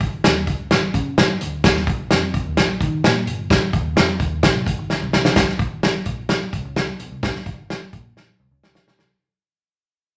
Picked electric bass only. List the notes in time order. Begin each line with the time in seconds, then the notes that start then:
0.01 G#1
0.24 D#2
0.47 C#2
0.71 G#1
0.94 C#3
1.18 G#2
1.42 D2
1.64 D#2
1.87 A#1
2.11 F2
2.45 D#2
2.57 A#1
2.81 D#3
3.04 A#2
3.27 G1
3.51 G#1
3.73 D#2
3.96 F2
4.20 D#2
4.55 C2
4.78 G#1
5.01 C2
5.13 C2
5.36 C#2
5.59 G#1
6.06 A#1
6.53 C2
6.65 C#2
6.76 C#2
7.00 B1
7.11 C2
7.23 C#2
7.46 G#1
7.93 A#1
8.40 C2
8.51 C#2
8.63 C#2
8.87 B1
8.99 C2